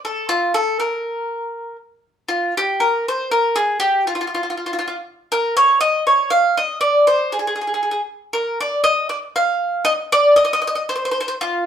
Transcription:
0.05 A4
0.29 F4
0.54 A4
0.80 A#4
2.29 F4
2.57 G4
2.80 A#4
3.08 C5
3.31 A#4
3.56 G#4
3.80 G4
4.07 F4
4.15 F4
4.21 F4
4.27 F4
4.35 F4
4.43 F4
4.50 F4
4.57 F4
4.66 F4
4.73 F4
4.79 F4
4.88 F4
5.32 A#4
5.57 C#5
5.81 D#5
6.07 C#5
6.30 F5
6.57 D#5
6.81 D5
7.07 C5
7.32 G#4
7.39 G#4
7.47 G#4
7.56 G#4
7.61 G#4
7.67 G#4
7.74 G#4
7.83 G#4
7.91 G#4
8.33 A#4
8.61 D5
8.84 D#5
9.09 D5
9.36 F5
9.85 D#5
10.12 D5
10.36 D#5
10.45 D#5
10.53 D#5
10.62 D#5
10.67 D#5
10.75 D#5
10.89 C5
10.96 C5
11.05 C5
11.11 C5
11.21 C5
11.28 C5
11.41 F4

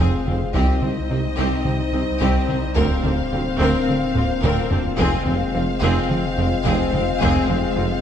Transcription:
Already playing: F1 G#3 C4 F4 G#4 C5 F5
0.00 F1 F2 C4 G#4
0.27 F1 F2 C4, taiko mid
0.54 C2 G3 C4 D#4 G4 C5 D#5, taiko
0.82 C2 C4, taiko mid
1.10 C2 C3 C4 D#4
1.37 C2 C4 G4
1.65 C3, taiko mid
1.93 C2 C4 D#4
2.20 C2 C4 G4, taiko
2.48 C2 C4, taiko mid
2.76 D1 D2 A#3 C4 F4 A#4 F5, taiko
3.03 D2 C4 D4, taiko mid
3.31 D2 D3 C4 F4
3.58 D2 C4 A#4
3.88 D3 A#3, taiko mid
4.15 D2 C4 F4, taiko low-mid
4.43 D2 C4 A#4, taiko low-mid
4.71 D2 C4 D4, taiko low
4.98 F1 F2 G#3 C4 F4 G#4 C5 F5, taiko
5.26 F1 F2 C4, taiko mid
5.54 F1 F2 F3 C4 F4
5.81 F1 F2 C4 G#4
6.09 F3, taiko mid
6.37 F1 F2 C4 F4
6.65 F1 F2 C4 G#4, taiko
6.93 F1 F2 C4, taiko mid
7.21 F1 F2 C4 G#4, taiko
7.49 F1 F2 C4, taiko mid
7.76 F1 F2 F3 C4 F4

